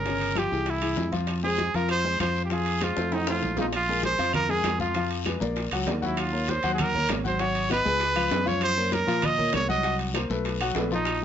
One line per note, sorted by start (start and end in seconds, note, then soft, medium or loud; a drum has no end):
0.00 0.46 G1 medium
0.00 0.40 A#4 medium
0.06 0.31 C#3 medium
0.06 0.31 C#4 medium
0.06 0.31 C#5 medium
0.06 high bongo medium
0.06 high timbale medium
0.06 long guiro medium
0.20 high conga soft
0.20 high timbale medium
0.35 0.49 F3 medium
0.35 0.49 F4 medium
0.35 0.49 G4 medium
0.35 0.71 G4 medium
0.35 high bongo medium
0.35 high conga medium
0.35 high timbale medium
0.35 short guiro medium
0.35 claves medium
0.51 0.95 C2 medium
0.51 0.77 E3 medium
0.51 0.77 E4 medium
0.51 0.77 G#4 medium
0.51 high bongo soft
0.51 high conga soft
0.51 short guiro medium
0.66 1.14 E4 medium
0.66 high bongo medium
0.66 high conga soft
0.66 high timbale medium
0.66 long guiro medium
0.82 1.07 E3 medium
0.82 1.07 E4 medium
0.82 1.07 G#4 medium
0.82 high conga soft
0.82 high timbale medium
0.82 claves medium
0.97 1.69 F2 medium
0.97 high bongo medium
0.97 low bongo medium
0.97 high conga medium
0.97 short guiro medium
1.12 1.38 F3 medium
1.12 1.38 F4 medium
1.12 1.38 F5 medium
1.12 high bongo soft
1.12 high conga medium
1.12 high timbale medium
1.12 short guiro medium
1.27 high bongo medium
1.27 high conga soft
1.27 high timbale medium
1.27 long guiro medium
1.27 claves medium
1.44 1.69 G#3 medium
1.44 1.69 G#4 medium
1.44 1.77 G#4 loud
1.44 1.69 C5 medium
1.58 high bongo medium
1.58 high conga medium
1.58 high timbale medium
1.58 short guiro medium
1.74 2.17 F2 medium
1.74 2.00 F3 medium
1.74 2.00 F4 medium
1.74 1.90 A#4 loud
1.74 2.00 F5 medium
1.74 high conga soft
1.74 high timbale medium
1.74 short guiro medium
1.89 2.19 C5 loud
1.89 high bongo medium
1.89 high timbale medium
1.89 long guiro medium
1.89 claves medium
2.04 2.17 G#3 medium
2.04 2.17 G#4 medium
2.04 2.18 C5 medium
2.04 high conga soft
2.20 2.91 F2 medium
2.20 2.45 F3 medium
2.20 2.45 F4 medium
2.20 2.43 C5 medium
2.20 2.45 F5 medium
2.20 high bongo medium
2.20 low bongo medium
2.20 high conga medium
2.20 high timbale medium
2.20 short guiro medium
2.20 claves medium
2.35 short guiro medium
2.45 2.54 G4 medium
2.50 2.76 F3 medium
2.50 2.76 F4 medium
2.50 2.85 G#4 loud
2.50 2.77 F5 medium
2.50 high bongo medium
2.50 high conga soft
2.50 high timbale medium
2.50 long guiro medium
2.66 high conga soft
2.66 high timbale medium
2.81 2.94 G#3 medium
2.81 3.16 F4 medium
2.81 2.94 G#4 medium
2.81 2.95 C5 medium
2.81 high bongo medium
2.81 high conga medium
2.81 high timbale medium
2.81 short guiro medium
2.81 claves medium
2.97 3.40 F2 medium
2.97 3.22 A3 medium
2.97 3.22 A4 medium
2.97 3.22 C5 medium
2.97 high bongo medium
2.97 short guiro medium
3.12 3.29 D#4 medium
3.12 low bongo medium
3.12 high conga soft
3.12 high timbale loud
3.12 long guiro medium
3.27 3.53 A3 medium
3.27 3.57 F4 medium
3.27 3.53 A4 medium
3.27 3.53 C5 medium
3.27 low bongo loud
3.27 high timbale medium
3.27 claves medium
3.42 4.14 A#1 medium
3.42 low bongo medium
3.42 high conga medium
3.42 short guiro medium
3.57 3.71 F3 medium
3.57 3.67 D#4 medium
3.57 3.71 F4 medium
3.57 3.71 F5 medium
3.57 low bongo medium
3.57 high conga medium
3.57 low timbale medium
3.57 short guiro medium
3.72 4.03 F4 loud
3.72 high bongo medium
3.72 high timbale loud
3.72 long guiro medium
3.72 claves medium
3.87 4.14 G#3 medium
3.87 4.14 G#4 medium
3.87 4.14 A#4 medium
3.87 high bongo soft
3.87 high conga soft
4.02 4.33 C5 loud
4.02 high bongo medium
4.02 high conga medium
4.02 high timbale medium
4.02 low timbale medium
4.02 short guiro medium
4.18 4.62 F2 medium
4.18 4.44 F3 medium
4.18 4.44 F4 medium
4.18 4.44 F5 medium
4.18 high timbale medium
4.18 short guiro medium
4.33 4.52 A#4 loud
4.33 high bongo medium
4.33 high conga soft
4.33 low conga medium
4.33 high timbale loud
4.33 long guiro medium
4.33 claves medium
4.49 4.74 G#3 medium
4.49 4.75 G#4 medium
4.49 4.80 G#4 loud
4.49 4.75 A#4 medium
4.49 high bongo soft
4.49 high conga soft
4.64 5.36 F2 medium
4.64 high bongo medium
4.64 low bongo medium
4.64 high conga medium
4.64 high timbale medium
4.64 low timbale medium
4.64 short guiro medium
4.64 claves medium
4.80 4.93 F3 medium
4.80 4.93 F4 medium
4.80 5.09 F4 medium
4.80 4.93 F5 medium
4.80 high bongo soft
4.80 high conga medium
4.80 short guiro medium
4.95 5.21 F3 medium
4.95 5.21 F4 medium
4.95 5.21 F5 medium
4.95 high bongo medium
4.95 high conga soft
4.95 high timbale medium
4.95 long guiro medium
5.11 high timbale medium
5.25 5.39 G#3 medium
5.25 5.39 G#4 medium
5.25 5.39 B4 medium
5.25 high bongo medium
5.25 high conga medium
5.25 high timbale medium
5.25 low timbale medium
5.25 short guiro medium
5.25 claves medium
5.40 5.70 A#1 medium
5.40 5.66 A#3 medium
5.40 5.66 A#4 medium
5.40 5.66 D5 medium
5.40 high bongo soft
5.40 high conga medium
5.40 short guiro medium
5.56 high bongo medium
5.56 high timbale medium
5.56 long guiro medium
5.71 5.86 C#2 medium
5.71 5.85 F#3 medium
5.71 5.85 F#4 medium
5.71 5.85 F#5 medium
5.71 high bongo soft
5.71 high timbale medium
5.71 claves medium
5.87 6.58 D#2 medium
5.87 6.00 A#3 medium
5.87 6.00 A#4 medium
5.87 6.00 D5 medium
5.87 high bongo medium
5.87 low bongo medium
5.87 high timbale medium
5.87 low timbale medium
5.87 short guiro medium
6.02 6.27 F#3 medium
6.02 6.21 E4 medium
6.02 6.27 F#4 medium
6.02 6.27 F#5 medium
6.02 high bongo soft
6.02 high conga medium
6.02 short guiro medium
6.17 6.52 F4 medium
6.17 high bongo medium
6.17 high conga soft
6.17 high timbale loud
6.17 long guiro medium
6.17 claves medium
6.32 6.58 A#3 medium
6.32 6.58 A#4 medium
6.32 6.58 C#5 medium
6.32 high bongo soft
6.48 6.73 C5 medium
6.48 high bongo medium
6.48 high conga loud
6.48 high timbale medium
6.48 low timbale medium
6.48 short guiro medium
6.63 7.06 D#2 loud
6.63 6.89 F#3 medium
6.63 6.89 F#4 medium
6.63 6.89 F#5 medium
6.63 high timbale medium
6.63 short guiro medium
6.74 6.82 G#4 medium
6.78 7.10 A#4 loud
6.78 high bongo medium
6.78 high conga soft
6.78 low conga medium
6.78 high timbale loud
6.78 long guiro medium
6.78 claves medium
6.94 7.19 A#3 medium
6.94 7.20 A#4 medium
6.94 7.20 C#5 medium
6.94 high bongo soft
6.94 high conga soft
6.94 low conga medium
7.09 7.80 G#1 medium
7.09 high bongo medium
7.09 low bongo medium
7.09 high conga medium
7.09 high timbale loud
7.09 low timbale medium
7.09 short guiro medium
7.09 claves medium
7.24 7.37 F#3 medium
7.24 7.37 F#4 medium
7.24 7.42 C5 medium
7.24 7.37 F#5 medium
7.24 high bongo soft
7.24 high conga medium
7.24 short guiro medium
7.39 7.65 F#3 medium
7.39 7.65 F#4 medium
7.39 7.71 C#5 loud
7.39 7.65 F#5 medium
7.39 high bongo medium
7.39 high timbale medium
7.39 long guiro medium
7.55 high conga soft
7.55 high timbale medium
7.70 7.83 B3 medium
7.70 7.83 B4 medium
7.70 8.49 B4 loud
7.70 7.83 D#5 medium
7.70 high bongo medium
7.70 high conga medium
7.70 high timbale medium
7.70 low timbale medium
7.70 short guiro medium
7.70 claves medium
7.85 8.29 C#2 loud
7.85 8.11 G#3 medium
7.85 8.11 G#4 medium
7.85 8.11 B4 medium
7.85 high bongo soft
7.85 high conga medium
7.85 short guiro medium
8.00 high bongo medium
8.00 high conga soft
8.00 high timbale medium
8.00 long guiro medium
8.16 8.28 F3 medium
8.16 8.29 F4 medium
8.16 8.29 F5 medium
8.16 high bongo soft
8.16 high timbale medium
8.16 claves medium
8.31 9.02 F#2 medium
8.31 8.44 G#3 medium
8.31 8.44 G#4 medium
8.31 8.44 B4 medium
8.31 high bongo medium
8.31 low bongo medium
8.31 high timbale medium
8.31 low timbale medium
8.31 short guiro medium
8.46 8.71 F3 medium
8.46 8.71 F4 medium
8.46 8.63 C#5 medium
8.46 8.71 F5 medium
8.46 high bongo soft
8.46 high conga medium
8.46 short guiro medium
8.61 8.95 C5 loud
8.61 high bongo medium
8.61 high conga soft
8.61 high timbale loud
8.61 long guiro medium
8.61 claves medium
8.77 9.02 A#3 medium
8.77 9.02 A#4 medium
8.77 9.03 C#5 medium
8.77 high bongo soft
8.77 high conga soft
8.92 9.27 A#4 loud
8.92 high bongo medium
8.92 high conga medium
8.92 high timbale medium
8.92 low timbale medium
8.92 short guiro medium
9.07 9.51 A#2 medium
9.07 9.32 F3 medium
9.07 9.33 F4 medium
9.07 9.33 F5 medium
9.07 high timbale medium
9.07 short guiro medium
9.22 9.54 D#5 loud
9.22 high bongo medium
9.22 high conga soft
9.22 low conga medium
9.22 high timbale medium
9.22 long guiro medium
9.22 claves medium
9.37 9.63 A#3 medium
9.37 9.63 A#4 medium
9.37 9.64 C#5 medium
9.37 high bongo soft
9.37 high conga soft
9.37 low conga medium
9.53 10.25 C2 medium
9.53 9.69 C#5 loud
9.53 high bongo medium
9.53 low bongo medium
9.53 high conga medium
9.53 high timbale loud
9.53 low timbale medium
9.53 short guiro medium
9.53 claves medium
9.68 9.81 F#3 medium
9.68 9.81 F#4 medium
9.68 9.98 D#5 loud
9.68 9.81 F#5 medium
9.68 high bongo soft
9.68 high conga medium
9.68 short guiro medium
9.83 10.09 F#3 medium
9.83 10.10 F#4 medium
9.83 10.10 F#5 medium
9.83 high bongo medium
9.83 high conga soft
9.83 high timbale medium
9.83 long guiro medium
9.99 high conga soft
9.99 high timbale medium
10.14 10.28 A#3 medium
10.14 10.28 A#4 medium
10.14 10.28 C5 medium
10.14 high bongo medium
10.14 high conga medium
10.14 high timbale medium
10.14 low timbale medium
10.14 short guiro medium
10.14 claves medium
10.30 10.73 B1 medium
10.30 10.55 A3 medium
10.30 10.55 A4 medium
10.30 10.56 B4 medium
10.30 high bongo soft
10.30 high conga medium
10.30 short guiro medium
10.45 high bongo medium
10.45 high conga soft
10.45 high timbale medium
10.45 long guiro medium
10.60 10.73 F#3 medium
10.60 10.74 F#4 medium
10.60 10.74 F#5 medium
10.60 high bongo soft
10.60 high conga soft
10.60 high timbale loud
10.60 claves medium
10.75 11.25 A#1 medium
10.75 10.88 A3 medium
10.75 10.89 A4 medium
10.75 10.89 B4 medium
10.75 high bongo medium
10.75 low bongo medium
10.75 high timbale medium
10.75 low timbale medium
10.75 short guiro medium
10.90 11.17 F3 medium
10.90 11.21 D#4 medium
10.90 11.17 F4 medium
10.90 11.17 F5 medium
10.90 high bongo soft
10.90 short guiro medium
11.05 high bongo medium
11.05 high conga soft
11.05 high timbale loud
11.05 long guiro medium
11.05 claves medium
11.21 high bongo soft